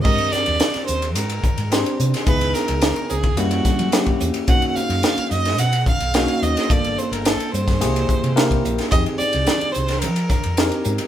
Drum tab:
CC |x---------------|----------------|----------------|----------------|
RD |-x-xxx-xxx-xxx-x|xx-xxx-xxx-xxx-x|xx-xxx-xxx-xxx-x|xx-xxx-xxx-xxx-x|
HH |--p-p-p-p-p-p-p-|p-p-p-p-p-p-p-p-|p-p-p-p-p-p-p-p-|p-p-p-p-p-p-p-p-|
SD |--o-oo------o--o|--o-o-----o-o---|----o--o----o--o|----o--o----o--o|
BD |o---------o-----|o------o--o--o--|o---------o-----|o------o--o--o--|

CC |----------------|
RD |xx-xxx-xxx-xxx-x|
HH |p-p-p-p-p-p-p-p-|
SD |----o--o--o-o---|
BD |o---------o-----|